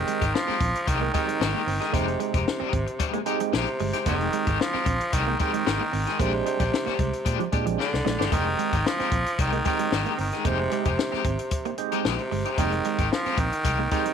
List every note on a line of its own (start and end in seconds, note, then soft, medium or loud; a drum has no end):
0.00 0.36 D#3 loud
0.00 0.26 G#3 medium
0.00 0.25 C4 medium
0.00 0.26 D#4 medium
0.00 0.26 G4 medium
0.07 0.19 G#3 medium
0.07 muted clean electric guitar stroke soft
0.07 closed hi-hat medium
0.21 0.32 G#1 medium
0.21 0.32 G#3 soft
0.21 0.32 D#4 medium
0.21 0.32 G4 medium
0.21 muted clean electric guitar stroke soft
0.21 kick medium
0.21 closed hi-hat medium
0.33 0.89 F3 loud
0.33 muted clean electric guitar stroke soft
0.33 snare loud
0.47 0.58 G#3 medium
0.47 0.58 C4 medium
0.47 0.59 D#4 medium
0.47 0.59 G4 medium
0.47 muted fingered electric bass stroke soft
0.47 snare soft
0.60 0.72 A#1 loud
0.60 0.71 C4 medium
0.60 muted clean electric guitar stroke soft
0.60 kick loud
0.60 closed hi-hat medium
0.74 muted clean electric guitar stroke soft
0.74 closed hi-hat medium
0.87 1.08 C2 loud
0.87 1.13 D#3 loud
0.87 1.07 G#3 medium
0.87 1.01 D#4 medium
0.87 1.00 G4 loud
0.87 kick medium
0.87 closed hi-hat loud
1.01 1.11 A#3 medium
1.01 1.06 D#4 medium
1.01 1.07 G4 medium
1.01 muted clean electric guitar stroke medium
1.13 1.95 D#3 loud
1.13 1.41 G#3 medium
1.13 1.25 G#3 medium
1.13 1.41 C4 medium
1.13 1.41 D#4 medium
1.13 1.26 D#4 medium
1.13 1.41 G4 loud
1.13 1.26 G4 medium
1.13 kick medium
1.13 closed hi-hat medium
1.28 1.38 G#3 medium
1.28 muted clean electric guitar stroke medium
1.28 closed hi-hat medium
1.40 1.52 G#1 medium
1.40 1.61 G#3 loud
1.40 1.61 D#4 loud
1.40 1.61 G4 loud
1.40 muted clean electric guitar stroke soft
1.40 snare loud
1.54 1.64 A#3 medium
1.67 1.78 G1 medium
1.67 1.78 C4 medium
1.67 muted clean electric guitar stroke soft
1.67 open hi-hat medium
1.80 1.92 G#3 medium
1.80 1.86 D#4 medium
1.80 1.92 D#4 medium
1.80 1.86 G4 medium
1.80 1.91 G#4 medium
1.80 snare soft
1.80 closed hi-hat medium
1.93 2.15 F1 loud
1.93 2.20 C3 loud
1.93 2.38 G#3 medium
1.93 2.08 G#3 loud
1.93 2.04 A#3 medium
1.93 2.38 C4 medium
1.93 2.38 D#4 medium
1.93 2.07 D#4 medium
1.93 2.38 G4 medium
1.93 2.06 G4 loud
1.93 kick loud
1.93 closed hi-hat medium
2.07 muted clean electric guitar stroke medium
2.07 closed hi-hat soft
2.20 3.23 C3 medium
2.20 2.31 G#3 medium
2.20 muted clean electric guitar stroke soft
2.20 closed hi-hat medium
2.33 2.44 F1 loud
2.33 2.45 G#3 medium
2.33 2.45 D#4 medium
2.33 2.45 G4 medium
2.33 muted clean electric guitar stroke soft
2.33 kick loud
2.33 closed hi-hat medium
2.47 muted clean electric guitar stroke soft
2.47 snare loud
2.60 2.72 G#3 medium
2.60 2.70 C4 medium
2.60 2.72 D#4 medium
2.60 2.73 G4 medium
2.60 muted fingered electric bass stroke soft
2.72 2.84 G#1 medium
2.72 2.84 C4 medium
2.72 muted clean electric guitar stroke soft
2.72 kick loud
2.72 closed hi-hat medium
2.86 muted clean electric guitar stroke soft
2.86 closed hi-hat medium
2.99 3.20 G#3 medium
2.99 3.13 D#4 loud
2.99 3.12 G4 loud
2.99 kick loud
2.99 closed hi-hat loud
3.13 3.23 A#3 medium
3.13 3.19 D#4 medium
3.13 3.19 G4 loud
3.13 muted clean electric guitar stroke soft
3.13 closed hi-hat soft
3.26 3.38 G#3 medium
3.26 3.54 G#3 loud
3.26 3.54 C4 medium
3.26 3.54 D#4 loud
3.26 3.38 D#4 medium
3.26 3.54 G4 loud
3.26 3.38 G4 medium
3.26 muted clean electric guitar stroke soft
3.26 closed hi-hat medium
3.40 3.50 G#3 medium
3.40 muted clean electric guitar stroke medium
3.40 closed hi-hat medium
3.53 3.65 A#1 loud
3.53 4.04 C3 medium
3.53 3.68 G#3 medium
3.53 3.68 D#4 loud
3.53 3.68 G4 loud
3.53 snare loud
3.67 closed hi-hat soft
3.79 3.91 G1 medium
3.79 3.91 G#3 medium
3.79 muted clean electric guitar stroke soft
3.79 open hi-hat medium
3.93 4.05 G#3 medium
3.93 3.98 D#4 medium
3.93 4.04 D#4 medium
3.93 3.99 G4 medium
3.93 4.04 G4 medium
3.93 snare soft
3.93 closed hi-hat medium
4.06 4.27 F1 loud
4.06 4.63 D#3 loud
4.06 4.50 G#3 medium
4.06 4.27 G#3 medium
4.06 4.17 A#3 medium
4.06 4.51 C4 medium
4.06 4.51 D#4 medium
4.06 4.20 D#4 medium
4.06 4.51 G4 medium
4.06 4.19 G4 medium
4.06 kick loud
4.06 closed hi-hat medium
4.20 muted clean electric guitar stroke medium
4.20 closed hi-hat soft
4.33 4.44 G#3 medium
4.33 muted clean electric guitar stroke medium
4.33 closed hi-hat medium
4.47 4.57 G#1 loud
4.47 4.58 G#3 medium
4.47 4.58 D#4 medium
4.47 4.57 G4 medium
4.47 muted clean electric guitar stroke soft
4.47 kick medium
4.47 closed hi-hat medium
4.60 5.15 F3 loud
4.60 muted clean electric guitar stroke soft
4.60 snare loud
4.73 4.85 G#3 medium
4.73 4.83 C4 medium
4.73 4.86 D#4 medium
4.73 4.86 G4 medium
4.73 muted fingered electric bass stroke soft
4.73 snare soft
4.86 4.97 A#1 loud
4.86 4.97 C4 medium
4.86 muted clean electric guitar stroke soft
4.86 kick loud
4.86 closed hi-hat medium
5.00 muted clean electric guitar stroke soft
5.00 closed hi-hat medium
5.12 5.34 C2 loud
5.12 5.40 D#3 loud
5.12 5.33 G#3 medium
5.12 5.27 D#4 medium
5.12 5.26 G4 loud
5.12 kick loud
5.12 closed hi-hat loud
5.27 5.37 A#3 medium
5.27 5.32 D#4 medium
5.27 5.32 G4 medium
5.27 muted clean electric guitar stroke soft
5.39 6.22 D#3 loud
5.39 5.51 G#3 medium
5.39 5.67 G#3 medium
5.39 5.67 C4 medium
5.39 5.51 D#4 medium
5.39 5.67 D#4 medium
5.39 5.51 G4 medium
5.39 5.67 G4 loud
5.39 muted clean electric guitar stroke soft
5.39 kick loud
5.39 closed hi-hat medium
5.53 5.63 G#3 medium
5.53 muted clean electric guitar stroke soft
5.53 closed hi-hat medium
5.66 5.78 G#1 medium
5.66 5.81 G#3 loud
5.66 5.81 D#4 loud
5.66 5.82 G4 loud
5.66 snare loud
5.80 5.90 A#3 medium
5.92 6.04 G#1 medium
5.92 6.03 C4 medium
5.92 muted clean electric guitar stroke soft
5.92 open hi-hat medium
6.07 6.18 G#3 medium
6.07 6.12 D#4 medium
6.07 6.17 D#4 medium
6.07 6.12 G4 medium
6.07 6.17 G#4 medium
6.07 snare soft
6.07 closed hi-hat medium
6.19 6.41 A#1 loud
6.19 6.46 C3 medium
6.19 6.34 G#3 loud
6.19 6.64 G#3 medium
6.19 6.30 A#3 medium
6.19 6.64 C4 medium
6.19 6.33 D4 loud
6.19 6.64 D4 medium
6.19 6.33 G4 loud
6.19 6.64 G4 loud
6.19 kick loud
6.19 closed hi-hat medium
6.34 muted clean electric guitar stroke medium
6.46 7.48 C3 loud
6.46 6.57 G#3 medium
6.46 muted clean electric guitar stroke soft
6.46 closed hi-hat medium
6.60 6.70 A#1 loud
6.60 6.71 G#3 soft
6.60 6.71 D4 medium
6.60 6.70 G4 medium
6.60 muted clean electric guitar stroke soft
6.60 kick medium
6.60 closed hi-hat medium
6.73 muted clean electric guitar stroke soft
6.73 snare loud
6.86 6.98 G#3 medium
6.86 6.96 A#3 medium
6.86 6.99 D4 medium
6.86 6.99 G4 medium
6.86 muted fingered electric bass stroke soft
6.86 snare soft
6.86 closed hi-hat soft
6.99 7.10 C2 medium
6.99 7.10 G#3 medium
6.99 muted clean electric guitar stroke soft
6.99 kick loud
6.99 closed hi-hat medium
7.13 muted clean electric guitar stroke soft
7.13 closed hi-hat medium
7.25 7.37 A#2 loud
7.25 7.40 G#3 loud
7.25 7.39 D4 loud
7.25 7.38 G4 loud
7.25 kick loud
7.25 closed hi-hat loud
7.39 7.49 F3 medium
7.39 7.45 D4 medium
7.39 7.45 G4 loud
7.39 muted clean electric guitar stroke soft
7.39 closed hi-hat soft
7.52 7.64 A#2 loud
7.52 7.80 G#3 loud
7.52 7.64 G#3 medium
7.52 7.80 C4 loud
7.52 7.80 D4 medium
7.52 7.64 D4 medium
7.52 7.80 G4 loud
7.52 7.64 G4 medium
7.52 muted clean electric guitar stroke soft
7.52 kick loud
7.52 closed hi-hat medium
7.66 7.76 A#1 medium
7.66 7.76 F3 medium
7.66 muted clean electric guitar stroke medium
7.66 closed hi-hat medium
7.78 8.29 D3 loud
7.78 7.93 G#3 loud
7.78 7.94 D4 medium
7.78 7.94 G4 loud
7.78 snare medium
7.94 8.03 C2 medium
7.94 snare medium
8.05 8.17 A#1 medium
8.05 8.16 G#3 medium
8.05 muted clean electric guitar stroke soft
8.05 snare loud
8.19 8.30 G1 medium
8.19 8.30 G#3 soft
8.19 8.30 D4 medium
8.19 8.25 D4 medium
8.19 8.29 G4 medium
8.19 8.25 G4 medium
8.19 snare loud
8.32 8.53 F1 loud
8.32 8.88 D#3 loud
8.32 8.47 G#3 medium
8.32 8.77 G#3 medium
8.32 8.43 A#3 medium
8.32 8.77 C4 medium
8.32 8.77 D#4 medium
8.32 8.46 D#4 loud
8.32 8.77 G4 loud
8.32 8.45 G4 medium
8.32 kick loud
8.32 closed hi-hat loud
8.46 muted clean electric guitar stroke medium
8.59 8.70 G#3 medium
8.59 muted clean electric guitar stroke medium
8.59 closed hi-hat medium
8.73 8.83 G#1 medium
8.73 8.84 G#3 soft
8.73 8.84 D#4 medium
8.73 8.83 G4 medium
8.73 muted clean electric guitar stroke soft
8.73 kick medium
8.73 closed hi-hat medium
8.85 9.39 F3 loud
8.85 muted clean electric guitar stroke soft
8.85 snare loud
8.99 9.11 G#3 medium
8.99 9.09 C4 medium
8.99 9.11 D#4 medium
8.99 9.12 G4 medium
8.99 muted fingered electric bass stroke soft
8.99 snare soft
8.99 closed hi-hat soft
9.11 9.23 A#1 loud
9.11 9.23 C4 medium
9.11 muted clean electric guitar stroke medium
9.11 kick loud
9.11 closed hi-hat medium
9.26 muted clean electric guitar stroke soft
9.26 closed hi-hat medium
9.39 9.60 C2 loud
9.39 9.64 D#3 loud
9.39 9.59 G#3 medium
9.39 9.52 D#4 medium
9.39 9.51 G4 loud
9.39 kick loud
9.39 closed hi-hat loud
9.53 9.62 A#3 medium
9.53 9.58 D#4 medium
9.53 9.58 G4 medium
9.53 muted clean electric guitar stroke soft
9.53 closed hi-hat soft
9.65 10.16 D#3 loud
9.65 9.77 G#3 medium
9.65 9.93 G#3 medium
9.65 9.93 C4 medium
9.65 9.93 D#4 medium
9.65 9.77 D#4 medium
9.65 9.93 G4 medium
9.65 9.77 G4 medium
9.65 muted clean electric guitar stroke soft
9.65 kick medium
9.65 closed hi-hat medium
9.79 9.89 G#3 medium
9.79 muted clean electric guitar stroke medium
9.79 closed hi-hat medium
9.92 10.03 G#1 medium
9.92 10.13 G#3 medium
9.92 10.13 D#4 medium
9.92 10.13 G4 loud
9.92 muted clean electric guitar stroke medium
9.92 snare loud
10.06 10.15 A#3 medium
10.06 closed hi-hat soft
10.18 10.30 G1 medium
10.18 10.48 D#3 medium
10.18 10.29 C4 medium
10.18 muted clean electric guitar stroke soft
10.18 open hi-hat medium
10.32 10.44 G#3 medium
10.32 10.38 D#4 medium
10.32 10.44 D#4 medium
10.32 10.38 G4 medium
10.32 10.43 G#4 medium
10.32 snare soft
10.32 closed hi-hat medium
10.45 10.66 F1 loud
10.45 10.72 C3 loud
10.45 10.89 G#3 medium
10.45 10.60 G#3 medium
10.45 10.56 A#3 medium
10.45 10.90 C4 medium
10.45 10.90 D#4 medium
10.45 10.59 D#4 medium
10.45 10.90 G4 medium
10.45 10.58 G4 medium
10.45 kick loud
10.45 closed hi-hat loud
10.60 muted clean electric guitar stroke medium
10.71 11.75 C3 medium
10.71 10.83 G#3 medium
10.71 muted clean electric guitar stroke soft
10.71 closed hi-hat medium
10.85 10.96 F1 medium
10.85 10.97 G#3 medium
10.85 10.96 D#4 medium
10.85 10.96 G4 medium
10.85 muted clean electric guitar stroke soft
10.85 kick medium
10.85 closed hi-hat medium
10.98 muted clean electric guitar stroke soft
10.98 snare loud
11.12 11.24 G#3 medium
11.12 11.22 C4 medium
11.12 11.24 D#4 medium
11.12 11.24 G4 medium
11.12 muted fingered electric bass stroke soft
11.12 snare soft
11.24 11.36 G#1 medium
11.24 11.36 C4 medium
11.24 kick loud
11.24 closed hi-hat medium
11.39 muted clean electric guitar stroke medium
11.39 closed hi-hat medium
11.51 muted clean electric guitar stroke soft
11.51 kick medium
11.51 closed hi-hat loud
11.65 11.75 A#3 medium
11.65 11.71 D#4 medium
11.65 11.71 G4 medium
11.65 muted clean electric guitar stroke medium
11.65 closed hi-hat soft
11.78 12.06 G#3 loud
11.78 12.06 C4 loud
11.78 12.06 D#4 medium
11.78 12.06 G4 loud
11.78 muted clean electric guitar stroke soft
11.78 closed hi-hat medium
11.92 12.02 G#3 medium
11.92 12.03 G#3 medium
11.92 12.04 D#4 medium
11.92 12.04 G4 medium
11.92 closed hi-hat medium
12.04 12.16 A#1 medium
12.04 12.55 C3 medium
12.04 12.19 G#3 loud
12.04 12.20 D#4 loud
12.04 12.20 G4 loud
12.04 snare loud
12.19 closed hi-hat soft
12.31 12.43 G1 medium
12.31 12.42 G#3 medium
12.31 muted clean electric guitar stroke soft
12.31 open hi-hat medium
12.45 12.57 G#3 medium
12.45 12.51 D#4 medium
12.45 12.56 D#4 medium
12.45 12.56 G4 medium
12.45 12.51 G4 medium
12.45 closed hi-hat medium
12.58 12.79 F1 loud
12.58 13.14 D#3 loud
12.58 12.65 G3 medium
12.58 12.73 G#3 medium
12.58 12.69 A#3 medium
12.58 13.03 C4 medium
12.58 13.03 D#4 medium
12.58 12.72 D#4 loud
12.58 13.03 G4 medium
12.58 12.71 G4 loud
12.58 kick loud
12.58 closed hi-hat medium
12.64 13.06 G#3 medium
12.72 muted clean electric guitar stroke medium
12.72 closed hi-hat soft
12.84 12.96 G#3 medium
12.84 muted clean electric guitar stroke soft
12.84 closed hi-hat medium
12.99 13.09 G#1 loud
12.99 13.10 G#3 medium
12.99 13.10 D#4 medium
12.99 13.09 G4 medium
12.99 muted clean electric guitar stroke soft
12.99 kick medium
12.99 closed hi-hat medium
13.12 13.40 F3 loud
13.12 muted clean electric guitar stroke soft
13.12 snare loud
13.26 13.37 G#3 medium
13.26 13.35 C4 medium
13.26 13.38 D#4 medium
13.26 13.38 G4 medium
13.26 muted fingered electric bass stroke soft
13.26 snare soft
13.26 closed hi-hat soft
13.38 13.49 A#1 medium
13.38 13.91 D#3 loud
13.38 13.49 C4 medium
13.38 muted clean electric guitar stroke soft
13.38 kick loud
13.38 closed hi-hat medium
13.52 muted clean electric guitar stroke soft
13.52 closed hi-hat medium
13.65 13.86 C2 loud
13.65 13.79 G#3 medium
13.65 13.79 D#4 medium
13.65 13.78 G4 loud
13.65 kick medium
13.65 closed hi-hat loud
13.79 13.88 A#3 medium
13.79 13.84 D#4 medium
13.79 13.84 G4 medium
13.79 muted clean electric guitar stroke soft
13.91 14.13 D#3 loud
13.91 14.03 G#3 medium
13.91 14.13 G#3 medium
13.91 14.13 C4 medium
13.91 14.13 D#4 medium
13.91 14.03 D#4 medium
13.91 14.13 G4 loud
13.91 14.03 G4 medium
13.91 muted clean electric guitar stroke soft
13.91 kick medium
13.91 closed hi-hat medium
14.05 14.13 G#3 medium
14.05 muted clean electric guitar stroke soft
14.05 closed hi-hat medium